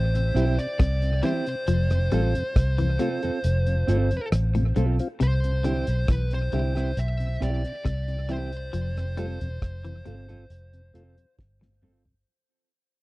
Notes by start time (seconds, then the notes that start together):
Already playing: A1 C5
0.15 C3, closed hi-hat
0.34 B1 G3 C4 E4 G4, closed hi-hat
0.59 C3 D5, closed hi-hat
0.79 C2 C3, kick, cross-stick, closed hi-hat
1.02 C3, closed hi-hat
1.23 E3 G3 C4 E4 G4 C5, closed hi-hat
1.46 C3, closed hi-hat
1.67 F1 F3, closed hi-hat
1.90 F2 C3, cross-stick, closed hi-hat
2.11 A1 G3 A3 C4 F4 A4, closed hi-hat
2.35 F2 C3, closed hi-hat
2.56 C2, kick, cross-stick, closed hi-hat
2.78 F2 C3 E3, closed hi-hat
2.99 C3 A3 C4 F4 A4, closed hi-hat
3.22 F2 C3 C4 F4 A4, closed hi-hat
3.44 F1, closed hi-hat
3.67 F2 C3, closed hi-hat
3.87 G1 A3 C4 F4 A4, closed hi-hat
4.11 F2 C3, closed hi-hat
4.32 A1, cross-stick, closed hi-hat
4.55 F2 A2 C3, closed hi-hat
4.76 B1 G2 A3 C4 F4 A4, closed hi-hat
4.99 C4 F4, closed hi-hat
5.20 C2 C3 C5, closed hi-hat
5.44 C3, closed hi-hat
5.64 D3 G3 C4 E4 G4, closed hi-hat
5.87 B1, closed hi-hat
6.08 B1 E3 B4, kick, cross-stick, closed hi-hat
6.31 C3 C5, closed hi-hat
6.52 C2 D3 G3 C4 E4 G4, closed hi-hat
6.75 C3 C4 E4 G4, cross-stick, closed hi-hat
6.97 B1 E5, closed hi-hat
7.20 C3, closed hi-hat
7.41 B1 G3 C4 E4 G4 D5, cross-stick, closed hi-hat
7.64 C3, closed hi-hat
7.85 C2 C3, kick, cross-stick, closed hi-hat
8.08 C3, closed hi-hat
8.29 E3 G3 C4 E4 G4 C5, closed hi-hat
8.53 closed hi-hat
8.73 F1 F3, closed hi-hat
8.97 F2 C3, cross-stick, closed hi-hat
9.17 G3 A3 C4 F4 A4, closed hi-hat
9.41 E1 F2 C3, closed hi-hat
9.62 F1, kick, cross-stick, closed hi-hat
9.85 F2 C3 E3, closed hi-hat
10.05 G1 C3 A3 C4 F4 A4, closed hi-hat
10.28 F2 C3 C4 F4 A4, closed hi-hat
10.50 F1, closed hi-hat
10.73 F2 C3, closed hi-hat
10.94 F1 A3 C4 F4 A4, closed hi-hat
11.18 F2 C3, closed hi-hat
11.39 G1, kick, snare
11.61 F2 A2 C3, snare
11.82 G2 A3 C4 F4 A4, mid tom
12.05 F2 C3, floor tom